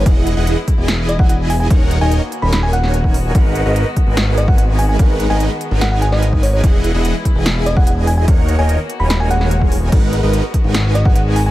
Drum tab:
CC |----------------|----------------|----------------|----------------|
HH |x-x-x-x-x-x-x-o-|x-x-x-x-x-x-x-o-|x-x-x-x-x-x-x-o-|x-x-x-x-x-x-x-o-|
SD |--------o-------|--------o--o----|--------o-------|--------o--o----|
BD |o-----o----o----|o------------o--|o-----o----o----|o------------o--|

CC |----------------|----------------|x---------------|
HH |x-x-x-x-x-x-x-o-|x-x-x-x-x-x-x-o-|x-x-x-x-x-x-x-o-|
SD |--------o-------|--------o--o----|--------o-------|
BD |o-----o----o----|o------------o--|o-----o----o----|